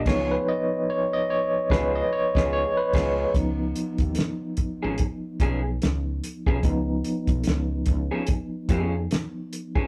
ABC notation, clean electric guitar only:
X:1
M:4/4
L:1/16
Q:"Swing 16ths" 1/4=73
K:C#m
V:1 name="Clean electric guitar"
[G,B,^EG]2 z6 [G,B,EG]2 z [G,B,EG]2 z [G,B,EG]2 | z6 z [^E,B,CG] z2 [E,B,CG] z4 [E,B,CG] | z6 z [^E,B,CG] z2 [E,B,CG] z4 [E,B,CG] |]